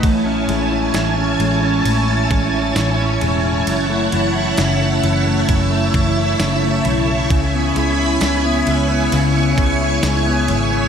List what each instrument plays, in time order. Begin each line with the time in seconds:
Already playing: clean electric guitar F#3 A3 D#4
0.03 picked electric bass A1, clean electric guitar A2, string machine E4 C#5 G#5 A5, kick, ride
0.26 clean electric guitar C#4
0.48 picked electric bass A1, clean electric guitar G#3, ride
0.71 clean electric guitar E4
0.94 picked electric bass A1, clean electric guitar E3, snare, ride, tambourine
1.17 clean electric guitar C#4
1.40 picked electric bass A1, clean electric guitar G#3, ride
1.63 clean electric guitar C#4
1.85 picked electric bass A1, clean electric guitar A2, ride
2.08 clean electric guitar C#4
2.31 picked electric bass A1, clean electric guitar G#3, kick, ride
2.54 clean electric guitar E4
2.76 picked electric bass A1, clean electric guitar E3, snare, ride, tambourine
2.99 clean electric guitar C#4
3.21 picked electric bass E1, clean electric guitar G#3, ride
3.44 clean electric guitar C#4
3.67 picked electric bass F#1, clean electric guitar F#2, string machine F#5 A5, ride
3.90 clean electric guitar A3
4.12 picked electric bass F#1, clean electric guitar E3, ride
4.35 clean electric guitar E4
4.57 picked electric bass F#1, clean electric guitar C#3, snare, ride, tambourine
4.81 clean electric guitar A3
5.04 picked electric bass F#1, clean electric guitar E3, ride
5.26 clean electric guitar A3
5.49 picked electric bass F#1, clean electric guitar F#2, string machine E5, kick, ride
5.72 clean electric guitar A3
5.94 picked electric bass F#1, clean electric guitar E3, kick, ride
6.17 clean electric guitar E4
6.40 picked electric bass F#1, clean electric guitar C#3, snare, ride, tambourine
6.62 clean electric guitar A3
6.85 picked electric bass B1, clean electric guitar E3, ride
7.08 clean electric guitar A3
7.30 picked electric bass C#2, clean electric guitar C#3, string machine C#5 G#5 B5, kick, ride
7.54 clean electric guitar B3
7.76 picked electric bass C#2, clean electric guitar G#3, ride
7.99 clean electric guitar E4
8.21 picked electric bass C#2, clean electric guitar G#3, snare, ride, tambourine
8.45 clean electric guitar B3
8.67 picked electric bass C#2, clean electric guitar G#3, ride
8.90 clean electric guitar B3
9.12 picked electric bass C#2, clean electric guitar C#3, string machine C#6, ride
9.36 clean electric guitar B3
9.58 picked electric bass C#2, clean electric guitar G#3, kick, ride
9.81 clean electric guitar E4
10.03 picked electric bass C#2, clean electric guitar G#3, snare, ride, tambourine
10.26 clean electric guitar B3
10.48 picked electric bass G#1, clean electric guitar G#3, ride
10.71 clean electric guitar B3